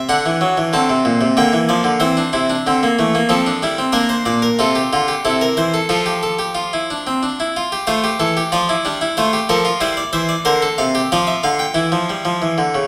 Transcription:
0.09 D3 D4 F#5
0.26 E3
0.41 F#3
0.57 E3
0.73 D3 C4 A5
0.90 C3
1.05 A#2
1.21 C3
1.37 D3 A#3 G5
1.53 E3
1.69 F3 D5
1.84 D3
2.00 E3 C4 C5
2.17 D4
2.33 C3 E4
2.50 D4
2.67 D3 C4
2.83 A#3
2.99 E3 A3
3.15 A#3
3.29 F3 C4 A4
3.46 D4
3.62 G3 E4
3.78 C4
3.92 A#3 D4 A#4
4.09 C5
4.26 A#2 D5
4.42 A#4
4.59 C3 F4 A4
4.75 G4
4.93 D3 F4
5.08 G4
5.25 C3 E4 A4
5.41 A#4
5.57 E3 C5
5.74 A4
5.89 F3 F4 A4
6.06 G4
6.23 A4
6.39 G4
6.55 F4
6.73 E4
6.90 D4
7.07 C4
7.23 D4
7.40 E4
7.56 F4
7.72 G4
7.87 A3 F4 C5
8.04 G4
8.20 E3 A4
8.37 G4
8.52 F3 F4 D5
8.69 E4
8.85 G3 D4
9.01 E4
9.17 A3 F4 C5
9.33 G4
9.49 F3 A4 A#4
9.65 F4
9.80 G3 E4 C5
9.97 D5
10.13 E3 C5 E5
10.29 D5
10.45 D3 A#4 C5
10.62 A4
10.78 C3 F5
10.95 G4
11.12 F3 F4 D5
11.27 E5
11.43 D3 F5
11.59 G5
11.74 E3 E4
11.92 F3
12.10 G3
12.25 F3
12.42 E3
12.58 D3
12.75 C#3

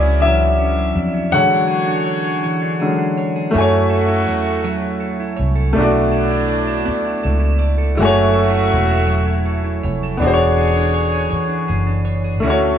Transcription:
Already playing: C#2 D3 E3 F#3 G#3 C#4 E4 G#4 D5 E5
0.03 C#4
0.20 D3 E3 F#3 C#4 E4 E5
0.40 F#3
0.58 C#4
0.77 F#3
0.95 F2 E4
1.14 C#4
1.31 D3 E3 F#3 G#3 C#4 F#4 C#5 F#5
1.50 D4
1.68 G#4
1.88 D4
2.06 C#5
2.24 G#4
2.43 E3 C#5
2.62 D4
2.80 D3 F#3 G#3 C#4 G#4
2.99 D4
3.18 C#5
3.36 G#4
3.51 F#2 C#3 F#3 A3 E4 F#4 C#5
3.56 F#4 G#5
3.61 C#5
3.73 E4
3.90 A4
4.08 E4
4.28 E2 C#5
4.47 A4
4.64 F#3 C#5
4.82 E4
5.00 A4
5.20 E4
5.37 C2 C#5
5.56 A4
5.73 B1 A2 D3 F#3 A3 B3 D4 D5
5.78 E4 F#4
5.83 D5
5.92 E4
6.12 A4
6.31 E4
6.48 D5
6.67 A4
6.85 B3 D5, muted fingered electric bass stroke
7.05 E4
7.23 C#2 A4
7.40 E4
7.59 D5
7.78 A4
7.95 F#1 C#3 F#3 G#3 A3 E4 F#4 C#5
8.00 A3 F#4 G#5
8.05 C#5
8.16 E4
8.33 A4
8.51 E4
8.71 E1 C#5
8.90 A4
9.07 F#3 C#5
9.26 E4
9.45 A4
9.64 E4
9.83 F1 C#5
10.03 A4
10.17 D3 E3 B3 C#4 D4 G#4 C#5
10.22 E1 F#4 G#4 C#5
10.27 C5
10.34 C#5
10.39 D4
10.57 G#4
10.77 D4
10.94 C#5
11.12 G#4
11.30 E3 C#5, muted fingered electric bass stroke
11.49 D4
11.68 F#1 G#4
11.87 D4
12.05 C#5
12.24 G#4
12.40 D2 D3 F#3 A3 C#4 F#4 A4
12.45 E4 F#4
12.50 C#5
12.60 A3

